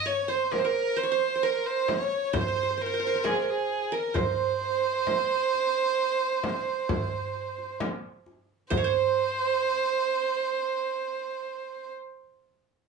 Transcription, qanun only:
0.00 0.54 D#5 medium
0.06 0.34 C#5 medium
0.28 0.96 C5 medium
0.65 1.43 A#4 medium
0.97 1.09 C5 medium
1.03 1.18 C#5 medium
1.12 1.35 C5 medium
1.35 2.33 C5 medium
1.43 2.56 A#4 medium
2.33 2.40 C5 medium
2.41 2.48 C5 medium
2.48 2.56 C5 medium
2.56 2.63 C5 soft
2.63 2.70 C5 medium
2.71 2.77 C5 soft
2.77 2.86 C5 soft
2.86 2.93 C5 soft
2.94 2.99 C5 medium
3.00 3.06 C5 soft
3.07 4.12 C5 medium
3.15 3.92 A#4 medium
3.24 4.45 G#4 medium
3.92 5.05 A#4 medium
4.14 7.75 C5 medium
8.70 8.83 C5 medium
8.77 8.90 C#5 medium
8.84 12.01 C5 medium

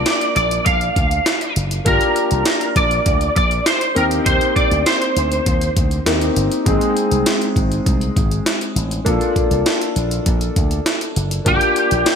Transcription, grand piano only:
0.00 1.81 A#3 medium
0.00 1.82 D4 medium
0.00 1.82 F4 medium
0.00 1.83 A5 medium
1.85 3.91 A#3 medium
1.85 3.92 D4 medium
1.85 3.92 F4 medium
1.85 3.93 G4 medium
3.95 6.01 A#3 medium
3.95 6.02 C4 medium
3.95 6.02 D#4 medium
3.95 6.03 G4 medium
6.06 6.66 A#3 medium
6.06 6.64 C4 soft
6.06 6.65 D#4 soft
6.06 6.67 G4 medium
6.65 9.02 G#3 medium
6.65 9.02 C4 medium
6.65 9.02 D#4 medium
6.65 9.03 G#4 medium
9.05 11.41 A#3 medium
9.05 11.42 D4 medium
9.05 11.42 F4 medium
9.05 11.43 A4 medium
11.45 12.15 A#3 medium
11.45 12.15 D4 medium
11.45 12.15 F4 medium
11.45 12.15 G4 medium

